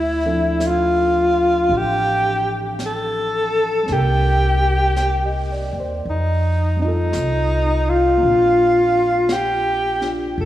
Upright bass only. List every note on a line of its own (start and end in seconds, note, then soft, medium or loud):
0.00 1.66 D2 medium
1.69 3.84 A1 medium
3.89 5.68 C2 medium
5.72 6.04 D#2 medium
6.05 7.10 F2 medium
7.15 8.19 C2 medium
8.23 10.34 A#1 medium
10.38 10.45 F1 medium